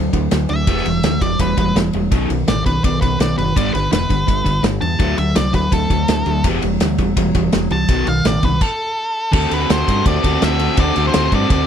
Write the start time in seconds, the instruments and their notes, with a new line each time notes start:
Already playing: overdriven electric guitar D3 F#3
0.13 fingered electric bass D2, overdriven electric guitar D3 F#3, kick, ride
0.31 fingered electric bass D2, overdriven electric guitar D3 F#3, snare, ride
0.49 fingered electric bass D2, overdriven electric guitar D3 F#3, lead electric guitar E5, ride
0.67 fingered electric bass E1, overdriven electric guitar E3 G3 B3, kick, ride
0.77 snare
0.85 fingered electric bass E1, overdriven electric guitar E3 G3, ride
1.03 fingered electric bass D2, overdriven electric guitar E3 G3, snare, ride
1.21 fingered electric bass E1, overdriven electric guitar E3 G3, lead electric guitar D5, kick, ride
1.39 fingered electric bass E1, overdriven electric guitar E3 G3, lead electric guitar B4, kick, ride
1.57 fingered electric bass E1, overdriven electric guitar E3 G3, lead electric guitar B4, kick, ride
1.75 fingered electric bass E1, overdriven electric guitar E3 G3, snare, ride
1.93 fingered electric bass E1, overdriven electric guitar E3 G3, ride
2.11 fingered electric bass B1, overdriven electric guitar B2 D#3 F#3, kick, ride
2.30 fingered electric bass B1, overdriven electric guitar B2 D#3, ride
2.48 fingered electric bass A1, overdriven electric guitar B2 D#3, lead electric guitar D5, snare, ride
2.66 fingered electric bass B1, overdriven electric guitar B2 D#3, lead electric guitar B4, kick, ride
2.84 fingered electric bass B1, overdriven electric guitar B2 D#3, lead electric guitar D5, kick, ride
3.01 fingered electric bass B1, overdriven electric guitar B2 D#3, lead electric guitar B4, kick, ride
3.20 fingered electric bass B1, overdriven electric guitar B2 D#3, lead electric guitar D5, snare, ride
3.38 fingered electric bass F#1, overdriven electric guitar B2 D#3, lead electric guitar B4, ride
3.56 fingered electric bass G1, overdriven electric guitar G2 D3 G3, lead electric guitar D5, kick, ride
3.74 fingered electric bass G1, overdriven electric guitar G2 D3, lead electric guitar B4, snare, ride
3.91 fingered electric bass E1, overdriven electric guitar G2 D3, lead electric guitar B4, snare, ride
4.09 fingered electric bass G1, overdriven electric guitar G2 D3, kick, ride
4.27 fingered electric bass G1, overdriven electric guitar G2 D3, kick, ride
4.44 fingered electric bass G1, overdriven electric guitar G2 D3, kick, ride
4.63 fingered electric bass G1, overdriven electric guitar G2 D3, snare, ride
4.81 fingered electric bass E2, overdriven electric guitar G2 D3, lead electric guitar A5, ride
4.99 fingered electric bass D2, overdriven electric guitar D3 F#3 A3, kick, ride
5.17 fingered electric bass D2, overdriven electric guitar D3 F#3, lead electric guitar E5, ride
5.35 fingered electric bass C2, overdriven electric guitar D3 F#3, lead electric guitar D5, snare, ride
5.53 fingered electric bass D2, overdriven electric guitar D3 F#3, lead electric guitar B4, kick, ride
5.72 fingered electric bass D2, overdriven electric guitar D3 F#3, lead electric guitar A4, kick, ride
5.90 fingered electric bass D2, overdriven electric guitar D3 F#3, kick, ride
6.08 fingered electric bass D2, overdriven electric guitar D3 F#3, snare, ride
6.26 fingered electric bass D2, overdriven electric guitar D3 F#3, ride
6.44 fingered electric bass E1, overdriven electric guitar E3 G3 B3, kick, ride
6.62 fingered electric bass E1, overdriven electric guitar E3 G3, ride
6.80 fingered electric bass D2, overdriven electric guitar E3 G3, snare, ride
6.98 fingered electric bass E1, overdriven electric guitar E3 G3, kick, ride
7.17 fingered electric bass E1, overdriven electric guitar E3 G3, kick, ride
7.34 fingered electric bass E1, overdriven electric guitar E3 G3, kick, ride
7.52 fingered electric bass E1, overdriven electric guitar E3 G3, snare, ride
7.71 fingered electric bass C2, overdriven electric guitar E3 G3, lead electric guitar A5, ride
7.88 fingered electric bass B1, overdriven electric guitar B2 D#3 F#3, kick, ride
8.07 fingered electric bass B1, overdriven electric guitar B2 D#3, lead electric guitar F5, ride
8.25 fingered electric bass A1, overdriven electric guitar B2 D#3, lead electric guitar D5, snare, ride
8.43 fingered electric bass C2, overdriven electric guitar B2 D#3, lead electric guitar B4, kick, ride
8.61 lead electric guitar A4, kick, crash
9.32 fingered electric bass D2, overdriven electric guitar D3 A3 C4 F#4 A4, lead electric guitar A4, kick, crash
9.50 fingered electric bass D2, overdriven electric guitar C4 F#4 A4, lead electric guitar B4, ride
9.69 fingered electric bass D2, overdriven electric guitar A3 C4 F#4 A4, lead electric guitar C5, snare, ride
9.88 fingered electric bass G2, kick, ride
10.06 fingered electric bass D2, lead electric guitar D5, kick, ride
10.23 fingered electric bass D2, overdriven electric guitar C4 F#4 A4, kick, ride
10.40 fingered electric bass D2, overdriven electric guitar D3 A3 C4 F#4 A4, lead electric guitar E5, snare, ride
10.58 overdriven electric guitar C4 F#4 A4, ride
10.77 fingered electric bass D2, overdriven electric guitar D3 A3 C4 F#4 A4, lead electric guitar D5, kick, ride
10.95 fingered electric bass D2, overdriven electric guitar C4 F#4 A4, ride
11.07 lead electric guitar C5
11.13 fingered electric bass D2, overdriven electric guitar A3 C4 F#4 A4, snare, ride
11.32 fingered electric bass G2, lead electric guitar D5, kick, ride
11.50 fingered electric bass D2, lead electric guitar D5, kick, ride